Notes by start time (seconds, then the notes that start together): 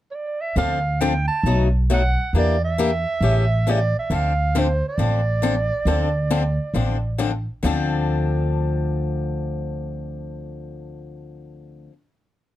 0.11 C#5 D5
0.41 E5
0.56 D2 D3 F3 C4 D4 A4 F5
1.01 D3 F3 C4 D4 A4 G5
1.28 A5
1.43 B1 B2 F#3 A3 D#4 F#4
1.90 B2 F#3 A3 D#4 F#4 F#5
2.33 E2 E3 A#3 D4 G4
2.38 D5
2.64 E5
2.78 E3 A#3 D4 G4
3.21 A1 C#3 E3 A3 C#4 G4
3.67 C#3 E3 A3 C#4 G4 D5
3.99 E5
4.10 D2 D3 F3 C4 D4 A4
4.15 F5
4.55 D3 F3 C4 D4 A4
4.59 C5
4.89 D5
4.98 A1 D3 F3 C4 D4 A4
5.42 D3 F3 C4 D4 A4
5.85 D2 D3 F3 C4 D4 A4
6.31 D3 F3 C4 D4 A4
6.74 A1 D3 F3 C4 D4 A4
7.18 D3 F3 C4 D4 A4
7.63 D2 D3 F3 C4 D4 A4